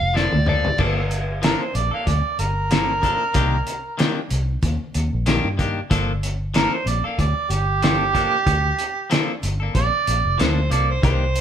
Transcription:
Already playing: F5
0.01 F1
0.14 F3 A#3 D4 A4 D5, snare
0.33 D2, high tom
0.46 F3 A#3 D4 A4 D5, mid tom
0.65 floor tom
0.78 G1 F3 A#3 D4 A4, kick, crash
1.11 closed hi-hat
1.42 F3 A#3 D4 A4 A#4, snare, closed hi-hat
1.63 C5
1.75 A#1 D5, closed hi-hat
1.91 A#3 D4 A4 F5
2.07 D2 D5, kick, closed hi-hat
2.39 G1 A#4, closed hi-hat
2.71 F3 A#3 D4 A4, snare, closed hi-hat
3.02 F3 A#3 D4 A4, kick, closed hi-hat
3.34 C2 D#3 A#3 D4 G4, kick, closed hi-hat
3.67 closed hi-hat
3.98 D#3 A#3 D4 G4, snare, closed hi-hat
4.30 C2, closed hi-hat
4.63 D#2, kick, closed hi-hat
4.94 D#2, closed hi-hat
5.13 A#1
5.26 D#3 A#3 D4 G4, snare, closed hi-hat
5.44 G2
5.58 D#3 A#3 D4 G4, kick, closed hi-hat
5.90 G1 F3 A#3 D4 A4, kick, closed hi-hat
6.23 closed hi-hat
6.54 F3 A#3 D4 A4 A#4, snare, closed hi-hat
6.74 C5
6.86 A#1 D5, closed hi-hat
7.04 A#3 D4 A4 F5
7.18 D2 D5, kick, closed hi-hat
7.50 G1 G4, closed hi-hat
7.82 F3 A#3 D4 A4, snare, closed hi-hat
8.13 F3 A#3 D4 A4, kick, closed hi-hat
8.46 D2, kick, closed hi-hat
8.79 closed hi-hat
9.10 F3 A#3 D4 A4, snare, closed hi-hat
9.43 G1, closed hi-hat
9.60 A#3 D4 A4
9.75 A#1 D5, kick, closed hi-hat
10.07 A#1, closed hi-hat
10.25 F1
10.38 D2 F3 A#3 D4 A4 C5, snare, closed hi-hat
10.70 C2 F3 A#3 D4 A4 D5, closed hi-hat
10.90 C5
11.02 C2 D#3 A#3 D4 G4 C5, kick, closed hi-hat
11.35 closed hi-hat

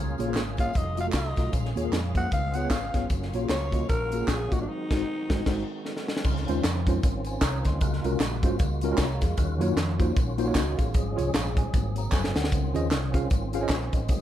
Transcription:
Already playing: C#2 C#3 A#3 C#4 F4 G#4 F5
0.00 G#3 A#3 C#4
0.18 A#1 A#3 F4 G#4 C#5, closed hi-hat, tambourine
0.28 A#3 F4 G#4 C5
0.34 G#1, snare, clap, closed hi-hat, tambourine
0.57 A#3 F4 G#4 C#5 F5, kick, closed hi-hat, tambourine
0.73 F1 F#3 A3 D#4 F#4 D#5, kick, closed hi-hat, tambourine
0.97 A3 F4 F#4 D#5 F5, closed hi-hat, tambourine
1.07 A3 F4 F#4 A4
1.12 C2, kick, snare, clap, closed hi-hat, tambourine
1.16 D#5
1.36 B1 A3 F4 F#4 D#5, kick, snare, closed hi-hat, tambourine
1.52 A#1 A#2 G#3 A#3 C#4 F4 G#4, kick, closed hi-hat, tambourine
1.65 snare
1.76 D#2 A#3 F4 G#4 C#5, closed hi-hat, tambourine
1.84 A#3 F4 G#4 A#4
1.92 F2, snare, clap, closed hi-hat, tambourine
2.15 A#3 F4 G#4 C5 F#5, kick, closed hi-hat, tambourine
2.30 C#2 C#3 B3 F5, kick, closed hi-hat, tambourine
2.54 B3 F4 G#4 C#5 F#5, closed hi-hat, tambourine
2.63 B3 F4 G#4 C#5
2.70 G#1 F5, kick, snare, clap, closed hi-hat, tambourine
2.94 G1 B3 F4 G#4 C#5, kick, snare, closed hi-hat, tambourine
3.09 F#1 F#3 A#3 F#4 F5, kick, closed hi-hat, tambourine
3.23 snare
3.33 A#1 A#3 F4 F#4 C#5, closed hi-hat, tambourine
3.42 A#3 F4 F#4 G#4
3.49 C#2 C#5, snare, clap, closed hi-hat, tambourine
3.72 A#3 F4 F#4 D#5, kick, closed hi-hat, tambourine
3.89 A#1 A#4, kick, closed hi-hat, tambourine
4.12 A#3 F4 F#4 G#4, closed hi-hat, tambourine
4.22 A#3 F4 F#4 G#4
4.28 A#1 G#4, kick, snare, clap, closed hi-hat, tambourine
4.51 A1 A#3 F4 F#4 D#5, kick, closed hi-hat, tambourine
4.61 D4
4.67 D#3 G#3 C4 D#4
4.91 G#1 G#3 D#4 F#4 C5, kick, snare, crash
5.29 G#1 G#3 D#4 F#4 C5, kick, snare
5.46 G#1 G#3 D#4 F#4 C5, kick, snare, crash
5.86 snare
5.97 snare
6.08 snare
6.17 snare
6.24 C#2 C#3 D#3 C4 C#4 F4, kick, crash, tambourine
6.37 snare
6.48 D#2 G#3 C#4 D#4 F4 C5, closed hi-hat, tambourine
6.64 F2, snare, clap, closed hi-hat, tambourine
6.87 G#3 C#4 D#4 F4 C5, kick, closed hi-hat, tambourine
7.03 G#1, kick, closed hi-hat, tambourine
7.25 C5 G#5, closed hi-hat, tambourine
7.41 C2 C#5 A#5, kick, snare, clap, closed hi-hat, tambourine
7.65 D2 D#5 C6, kick, snare, closed hi-hat, tambourine
7.81 C#2 C#3 G#3 A#3 F4 F#4, kick, closed hi-hat, tambourine
7.93 snare
8.04 C2 G#3 C#4 F4 F#4 A#4, closed hi-hat, tambourine
8.20 A#1, snare, clap, closed hi-hat, tambourine
8.43 G#1 G#3 C#4 F4 F#4 C5, kick, closed hi-hat, tambourine
8.59 C#2, kick, closed hi-hat, tambourine
8.81 G#3 C#4 F4 F#4 A#4, closed hi-hat, tambourine
8.91 G#3 C#4 F4 F#4 A#4
8.97 C2 A#5, kick, snare, clap, closed hi-hat, tambourine
9.21 E2 G#4 F5, kick, snare, closed hi-hat, tambourine
9.37 D#2 D#3 C#4 F4 F#4, kick, closed hi-hat, tambourine
9.60 F#2 A#3 D#4 F4 F#4 C#5, closed hi-hat, tambourine
9.76 F2, snare, clap, closed hi-hat, tambourine
10.00 A#3 D#4 F4 F#4 C5, kick, closed hi-hat, tambourine
10.16 A#1, kick, closed hi-hat, tambourine
10.38 A#3 D#4 F4 F#4 C5, closed hi-hat, tambourine
10.46 A#3 D#4 F4 F#4 C#5
10.55 C#2 F#4, kick, snare, clap, closed hi-hat, tambourine
10.78 A1 G#4 F5, kick, closed hi-hat, tambourine
10.94 G#1 G#2 F3 G#3 G#4, kick, closed hi-hat, tambourine
11.16 C2 F4 G#4 C#5, closed hi-hat, tambourine
11.34 A#1 G#4 F5, snare, clap, closed hi-hat, tambourine
11.57 C5 G#5, kick, closed hi-hat, tambourine
11.74 G#1 G#2 F#3 A#3 C4, kick, closed hi-hat, tambourine
11.96 A#5, closed hi-hat, tambourine
12.12 F#1 C5 G#5, kick, snare, clap, tambourine
12.24 snare
12.35 D2 A#4 F#5, snare, tambourine
12.44 snare
12.51 C#2 C#3 D#3 C#4 F4, kick, closed hi-hat, tambourine
12.74 D#2 C#4 F4 G#4 C5 D#5, closed hi-hat, tambourine
12.91 C2, snare, clap, closed hi-hat, tambourine
13.14 C#4 F4 G#4 C5 F5, kick, closed hi-hat, tambourine
13.30 G#1, kick, closed hi-hat, tambourine
13.53 C#4 F4 G#4 C5 F5, closed hi-hat, tambourine
13.61 C#4 F4 G#4 C5 D#5
13.68 A#1 C5 G#5, kick, snare, clap, closed hi-hat, tambourine
13.93 A1 D#5, kick, closed hi-hat, tambourine
14.08 G#1 G#2 F#3 A#3 G#4, kick, closed hi-hat, tambourine

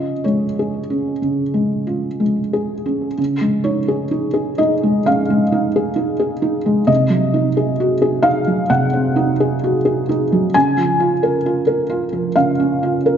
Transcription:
Already playing: C#3 C#4 F4 D#5
0.24 G#3 C#5
0.59 G#4
0.90 C#4
1.22 C#3
1.54 G#3
1.87 F4
2.20 G#3
2.53 G#4
2.86 C#4
3.18 C#3
3.41 G#3
3.64 D#4 C#5
3.88 G#4
4.11 D#4
4.34 G#4
4.58 D#4 D#5
4.83 G#3
5.06 C#4 F5
5.30 G#3
5.52 D#4
5.76 G#4
5.96 D#4
6.19 G#4
6.42 D#4
6.66 G#3
6.87 C3 D#5
7.10 F#3
7.34 D#4
7.57 G#4
7.80 F#4
8.02 G#4
8.22 D#4 F5
8.47 F#3
8.70 C3 F#5
8.93 C4
9.16 D#4
9.40 G#4
9.64 F#4
9.85 G#4
10.09 D#4
10.32 F#3
10.54 C#3 G#5
10.77 F3
11.00 F4
11.23 A#4
11.46 F4
11.67 A#4
11.90 F4
12.13 F3
12.36 C#3 F5
12.60 C#4
12.83 F4
13.06 A#4

